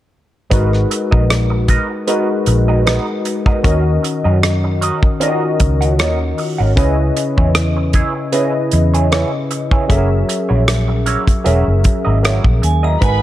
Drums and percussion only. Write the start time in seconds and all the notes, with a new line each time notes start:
0.51 kick, closed hi-hat
0.73 cross-stick
0.91 closed hi-hat
1.12 kick
1.30 cross-stick, closed hi-hat
1.68 kick, closed hi-hat
2.08 closed hi-hat
2.46 closed hi-hat
2.87 cross-stick, closed hi-hat
3.25 closed hi-hat
3.46 kick
3.64 kick, closed hi-hat
4.04 closed hi-hat
4.43 cross-stick, closed hi-hat
4.82 closed hi-hat
5.03 kick
5.21 closed hi-hat
5.60 kick, closed hi-hat
5.82 closed hi-hat
5.99 cross-stick, closed hi-hat
6.38 open hi-hat
6.77 kick, closed hi-hat
7.17 closed hi-hat
7.38 kick
7.55 cross-stick, closed hi-hat
7.93 kick, closed hi-hat
8.32 closed hi-hat
8.71 closed hi-hat
8.94 closed hi-hat
9.12 cross-stick, closed hi-hat
9.51 closed hi-hat
9.71 kick
9.90 kick, closed hi-hat
10.29 closed hi-hat
10.68 cross-stick, closed hi-hat
11.06 closed hi-hat
11.28 kick, closed hi-hat
11.46 closed hi-hat
11.84 kick, closed hi-hat
12.25 cross-stick, closed hi-hat
12.44 kick
12.63 closed hi-hat
13.02 kick, closed hi-hat